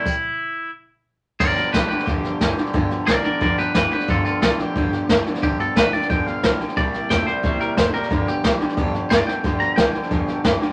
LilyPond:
<<
  \new Staff \with { instrumentName = "Clean electric guitar" } { \time 4/4 \key g \mixolydian \tempo 4 = 179 e'2 r2 | <bes' d''>8 <bes' d''>8 <g' b'>8 <g' b'>8 g'2 | r4 <bes' d''>8 <bes' d''>8 <bes' d''>8 <g' b'>8 <g' b'>8 <g' b'>8 | <f' a'>8 <f' a'>8 <f' a'>8 g'2 r8 |
g'8 a'8 b'8 d''8 g''8 f''4 r8 | d''4 g''8 c''4 bes'8 c''8 bes'8~ | bes'8 g'2 r8 d''8 g''8~ | g''8 bes''8 g''2 r4 | }
  \new Staff \with { instrumentName = "Steel-string acoustic guitar" } { \time 4/4 \key g \mixolydian r1 | <g, d f b f' g'>8 <f b f' g'>8 <f b f' g'>8 <f b f' g'>8 <g, d f b f' g'>8 <f b f' g'>8 <f b f' g'>8 <f b f' g'>8 | <g, d f b f' g'>8 <f b f' g'>8 <f f'>8 <f b f' g'>8 <g, d f b f' g'>8 <f b f' g'>8 <f b f'>8 <f b f' g'>8 | <g, d f b f' g'>8 <f b f' g'>8 <f b f' g'>8 <f b f' g'>8 <g, d f b f' g'>8 <f b f' g'>8 f8 <f b f' g'>8 |
<g, d f b f' g'>8 <f b f' g'>8 <f b f' g'>8 <f b f' g'>8 <g, d f b f' g'>8 <f b f' g'>8 <f b f' g'>8 <f b f' g'>8 | <c g bes e' g'>8 <bes e' g'>8 <g bes e' g'>8 <bes e' g'>8 <c g bes e' g'>8 <bes e' g'>8 <g bes>8 <bes e' g'>8 | <g, d f b f' g'>8 <f b f' g'>8 <f b f' g'>8 <f b f' g'>8 <g, d f b f' g'>8 <f b f' g'>8 <f f'>8 <f b f' g'>8 | <g, d f b f' g'>8 <f b f' g'>8 <f b f' g'>8 <f b f' g'>8 <g, d f b f' g'>8 <f b f' g'>8 <f f' g'>8 <f b f' g'>8 | }
  \new Staff \with { instrumentName = "Clean electric guitar" } { \clef bass \time 4/4 \key g \mixolydian r1 | <g, d>4 <g, e>8 <g, d>8 <g, d>4 <g, e>8 <g, d>8 | <g, d>4 <g, e>8 <g, d>8 <g, d>4 <g, e>8 <g, d>8 | <g, d>4 <g, e>8 <g, d>8 <g, d>4 <g, e>8 <g, d>8 |
<g, d>4 <g, e>8 <g, d>8 <g, d>4 <g, e>8 <g, d>8 | <c g>4 <c a>8 <c g>8 <c g>4 <c a>8 <c g>8 | <g, d>4 <g, e>8 <g, d>8 <g, d>4 <g, e>8 <g, d>8 | <g, d>4 <g, e>8 <g, d>8 <g, d>4 <g, e>8 <g, d>8 | }
  \new Staff \with { instrumentName = "Upright bass" } { \clef bass \time 4/4 \key g \mixolydian r1 | g,,8 r8 b,,8 r8 f,,8 r8 g,,8 r8 | g,,8 r8 b,,8 r8 f,,8 r8 g,,8 r8 | g,,8 r8 b,,8 r8 f,,8 r8 g,,8 r8 |
g,,8 r8 b,,8 r8 f,,8 r8 b,,8 r8 | c,8 r8 e,8 r8 bes,,8 r8 fis,,8 r8 | g,,8 r8 b,,8 r8 f,,8 r8 g,,8 r8 | g,,8 r8 b,,8 r8 f,,8 r8 g,,8 r8 | }
  \new DrumStaff \with { instrumentName = "Drums" } \drummode { \time 4/4 <cymc bd>4 r4 r4 r4 | <cymc bd sn>8 sn8 <hhp bd sn>8 sn16 sn16 <bd sn>8 sn8 <hhp bd sn>8 sn16 sn16 | <bd sn>8 sn8 <hhp bd sn>8 sn8 <bd sn>8 sn8 <hhp bd sn>8 sn16 sn16 | <bd sn>8 sn8 <hhp bd sn>8 sn8 <bd sn>8 sn8 <hhp bd sn>8 sn16 sn16 |
<bd sn>8 sn8 <hhp bd sn>8 sn16 sn16 <bd sn>8 sn8 <hhp bd sn>8 sn16 sn16 | <bd sn>8 sn8 <hhp bd sn>8 sn8 <bd sn>8 sn8 <hhp bd sn>8 sn16 sn16 | <bd sn>8 sn8 <hhp bd sn>8 sn16 sn16 <bd sn>8 sn8 <hhp bd sn>8 sn8 | <bd sn>8 sn8 <hhp bd sn>8 sn16 sn16 <bd sn>8 sn8 <hhp bd sn>8 sn8 | }
>>